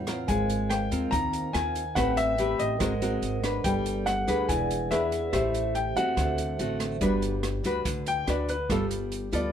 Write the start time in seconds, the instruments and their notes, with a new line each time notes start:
Already playing: upright bass E2, nylon-string guitar A2, vibraphone B4 C#5 F#5
0.07 nylon-string guitar C4 F4 A#4, cross-stick, closed hi-hat
0.26 upright bass G#1, nylon-string guitar G#3, vibraphone A#4 C5, grand piano G#5, kick, closed hi-hat
0.30 vibraphone D#5 F5
0.50 closed hi-hat
0.70 grand piano G5, cross-stick, closed hi-hat
0.91 upright bass D#2, nylon-string guitar C4 F4 A#4, closed hi-hat
1.11 upright bass D#2, nylon-string guitar D#3, grand piano A#5, kick, closed hi-hat
1.33 closed hi-hat
1.53 upright bass D#2, nylon-string guitar C4 F4 A#4, grand piano G#5, cross-stick, closed hi-hat
1.75 closed hi-hat
1.94 upright bass A1, nylon-string guitar A3 C4 G4 B4, vibraphone B4 E5, grand piano F#5, kick, cross-stick, closed hi-hat
2.00 vibraphone G5
2.17 grand piano E5, closed hi-hat
2.38 nylon-string guitar C4 G4 B4, closed hi-hat
2.59 upright bass A1, grand piano D#5, closed hi-hat
2.77 upright bass G#1, nylon-string guitar G#3 C4 F#4, vibraphone A#4 C5, kick, cross-stick, closed hi-hat
2.81 nylon-string guitar A#4, vibraphone D#5
3.02 nylon-string guitar C4 F#4 A#4, closed hi-hat
3.22 upright bass G#1, closed hi-hat
3.43 nylon-string guitar D4 B4, cross-stick, closed hi-hat
3.62 upright bass G1, nylon-string guitar G3, vibraphone A4 B4, grand piano G5, kick, closed hi-hat
3.66 vibraphone D5
3.86 closed hi-hat
4.06 grand piano F#5, cross-stick, closed hi-hat
4.27 upright bass D2, nylon-string guitar D4 G#4 B4, closed hi-hat
4.46 upright bass E1, nylon-string guitar E3, vibraphone G#4 B4 D5, grand piano G#5, kick, closed hi-hat
4.52 vibraphone F#5
4.71 closed hi-hat
4.91 upright bass E2, nylon-string guitar D4 G#4 B4, grand piano E5, cross-stick, closed hi-hat
5.12 closed hi-hat
5.30 upright bass A1, nylon-string guitar A3 E4 G4 C5, vibraphone G4 C5, grand piano E5, kick, cross-stick, closed hi-hat
5.54 closed hi-hat
5.75 grand piano G5, closed hi-hat
5.96 upright bass E2, nylon-string guitar A3 C4 F#4, grand piano F#5, closed hi-hat
6.14 upright bass D2, nylon-string guitar D3, vibraphone F#4 A4, kick, cross-stick, closed hi-hat
6.18 vibraphone C5 E5
6.38 closed hi-hat
6.59 upright bass A1, nylon-string guitar A3 C4 F#4, closed hi-hat
6.80 cross-stick, closed hi-hat
7.01 upright bass G1, nylon-string guitar G3 D4 F#4 B4, kick, closed hi-hat
7.22 closed hi-hat
7.43 cross-stick, closed hi-hat
7.64 upright bass D2, nylon-string guitar D4 F#4 B4, closed hi-hat
7.85 upright bass D2, nylon-string guitar D3, kick, closed hi-hat
8.06 grand piano G5, closed hi-hat
8.27 upright bass D2, nylon-string guitar D4 F#4 B4, grand piano D5, cross-stick, closed hi-hat
8.49 grand piano B4, closed hi-hat
8.70 upright bass G1, nylon-string guitar G3 B3 F4 A4, grand piano A4, kick, cross-stick, closed hi-hat
8.91 closed hi-hat
9.12 closed hi-hat
9.32 upright bass D2, nylon-string guitar B3 F4 A4, grand piano D5, closed hi-hat